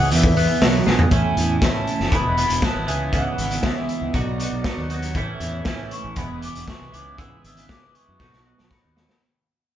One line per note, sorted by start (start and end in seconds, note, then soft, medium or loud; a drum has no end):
0.00 0.12 C#3 medium
0.00 0.12 E3 medium
0.00 0.11 G#3 medium
0.00 0.12 F#5 loud
0.11 1.12 E2 medium
0.11 0.31 E2 medium
0.11 0.83 E5 medium
0.11 open hi-hat medium
0.23 kick medium
0.36 0.46 E2 medium
0.36 1.12 B3 medium
0.36 open hi-hat medium
0.62 0.81 B1 medium
0.62 1.11 F#3 medium
0.62 snare loud
0.62 open hi-hat medium
0.86 0.96 A#1 medium
0.86 1.11 G#3 medium
0.86 snare medium
0.99 floor tom loud
1.11 1.21 A1 medium
1.11 1.87 A2 medium
1.11 1.61 E3 medium
1.11 1.61 A3 medium
1.11 1.62 C#4 medium
1.11 1.63 E4 medium
1.11 1.66 G#5 medium
1.11 kick medium
1.11 closed hi-hat medium
1.37 1.56 E2 medium
1.37 closed hi-hat medium
1.62 2.11 E3 medium
1.62 2.11 A3 medium
1.62 2.11 C#4 medium
1.62 2.12 E4 medium
1.62 2.16 A5 medium
1.62 kick loud
1.62 snare medium
1.62 closed hi-hat medium
1.87 closed hi-hat medium
2.00 2.10 F#1 medium
2.00 snare soft
2.11 2.22 E1 medium
2.11 2.62 E2 medium
2.11 2.62 B2 medium
2.11 2.38 E3 medium
2.11 2.37 G#3 medium
2.11 2.37 B3 medium
2.11 2.36 E4 loud
2.11 2.67 B5 loud
2.11 kick loud
2.11 closed hi-hat medium
2.25 2.45 E1 medium
2.37 2.61 E3 medium
2.37 2.61 G#3 medium
2.37 2.62 B3 medium
2.37 2.63 E4 medium
2.37 closed hi-hat medium
2.50 2.60 E1 medium
2.50 closed hi-hat medium
2.62 2.86 E3 medium
2.62 2.86 G#3 medium
2.62 2.86 B3 medium
2.62 2.85 E4 medium
2.62 2.91 A5 medium
2.62 kick loud
2.62 snare loud
2.62 closed hi-hat medium
2.75 2.85 G#1 medium
2.87 3.27 C#2 medium
2.87 3.11 C#3 medium
2.87 3.12 E3 medium
2.87 3.12 G#3 medium
2.87 3.13 B3 medium
2.87 3.14 E4 medium
2.87 3.14 G#5 medium
2.87 closed hi-hat medium
3.12 3.88 C#3 medium
3.12 3.61 E3 medium
3.12 3.63 G#3 medium
3.12 3.63 B3 medium
3.12 3.64 E4 medium
3.12 3.67 F#5 medium
3.12 kick loud
3.12 closed hi-hat medium
3.38 3.58 G#1 medium
3.38 closed hi-hat medium
3.51 closed hi-hat medium
3.63 4.12 E3 medium
3.63 4.13 G#3 medium
3.63 4.13 B3 medium
3.63 4.13 E4 medium
3.63 4.17 E5 medium
3.63 kick loud
3.63 snare loud
3.63 closed hi-hat medium
3.89 closed hi-hat medium
4.01 4.11 C#2 medium
4.13 4.24 B1 medium
4.13 4.64 B2 medium
4.13 4.63 F#3 medium
4.13 4.40 B3 medium
4.13 4.39 D#4 medium
4.13 4.38 F#4 medium
4.13 4.92 D5 medium
4.13 kick medium
4.13 closed hi-hat medium
4.27 4.47 B1 medium
4.39 4.64 B3 medium
4.39 4.64 D#4 medium
4.39 4.66 F#4 medium
4.39 closed hi-hat medium
4.52 4.62 B1 medium
4.64 5.14 F#3 medium
4.64 4.91 B3 medium
4.64 4.90 D#4 medium
4.64 4.89 F#4 medium
4.64 kick loud
4.64 snare medium
4.64 closed hi-hat soft
4.77 5.17 D#2 medium
4.90 5.15 B3 medium
4.90 5.14 D#4 medium
4.90 5.14 F#4 medium
4.90 5.66 C#5 medium
4.90 closed hi-hat medium
5.02 closed hi-hat medium
5.15 5.25 A1 medium
5.15 5.91 A2 medium
5.15 5.65 E3 medium
5.15 5.66 A3 medium
5.15 5.66 C#4 medium
5.15 5.67 E4 medium
5.15 kick medium
5.15 closed hi-hat medium
5.40 5.60 E2 medium
5.40 closed hi-hat soft
5.65 6.15 E3 medium
5.65 6.16 A3 medium
5.65 6.16 C#4 medium
5.65 6.16 E4 medium
5.65 kick loud
5.65 snare medium
5.65 closed hi-hat medium
5.91 6.19 C#6 medium
5.91 closed hi-hat medium
6.04 6.14 A1 medium
6.16 6.27 E1 medium
6.16 6.68 E2 medium
6.16 6.68 B2 medium
6.16 6.44 E3 medium
6.16 6.43 G#3 medium
6.16 6.43 B3 medium
6.16 6.41 E4 medium
6.16 6.42 B5 medium
6.16 kick loud
6.16 closed hi-hat medium
6.29 6.49 E1 medium
6.42 6.66 E3 medium
6.42 6.67 G#3 medium
6.42 6.69 B3 medium
6.42 6.68 E4 medium
6.42 6.66 D6 medium
6.42 closed hi-hat medium
6.55 6.65 E1 medium
6.55 closed hi-hat medium
6.67 6.91 E3 medium
6.67 6.92 G#3 medium
6.67 6.92 B3 medium
6.67 6.91 E4 medium
6.67 6.96 C#6 medium
6.67 kick medium
6.67 snare medium
6.67 closed hi-hat medium
6.81 6.91 C2 medium
6.92 7.33 C#2 medium
6.92 7.16 C#3 medium
6.92 7.17 E3 medium
6.92 7.17 G#3 medium
6.92 7.18 B3 medium
6.92 7.18 E4 medium
6.92 7.20 D6 medium
6.92 closed hi-hat medium
7.17 7.94 C#3 medium
7.17 7.67 E3 medium
7.17 7.67 G#3 medium
7.17 7.68 B3 medium
7.17 7.69 E4 medium
7.17 7.44 E6 medium
7.17 kick medium
7.17 closed hi-hat medium
7.44 7.64 G#1 medium
7.44 7.68 E6 medium
7.44 closed hi-hat medium
7.57 closed hi-hat medium
7.68 8.18 E3 medium
7.68 8.18 G#3 medium
7.68 8.18 B3 medium
7.68 8.19 E4 medium
7.68 7.96 D6 medium
7.68 kick loud
7.68 snare loud
7.68 closed hi-hat medium
7.95 8.73 C#6 medium
7.95 closed hi-hat medium
8.08 8.18 F#2 medium
8.19 8.30 B1 medium
8.19 8.70 B2 medium
8.19 8.69 F#3 medium
8.19 8.46 B3 medium
8.19 8.45 D#4 medium
8.19 8.44 F#4 medium
8.19 kick medium
8.19 snare soft
8.33 8.53 B1 medium
8.33 snare soft
8.45 8.70 B3 medium
8.45 8.71 D#4 medium
8.45 8.71 F#4 medium
8.58 8.69 B1 medium
8.58 snare medium
8.70 9.20 F#3 medium
8.70 8.97 B3 medium
8.70 8.96 D#4 medium
8.70 8.95 F#4 medium
8.70 9.22 B5 medium
8.70 kick medium
8.70 snare medium
8.85 9.04 D#2 medium
8.96 9.21 B3 soft
8.96 9.21 D#4 soft
8.96 9.20 F#4 medium
8.96 snare medium
9.09 snare medium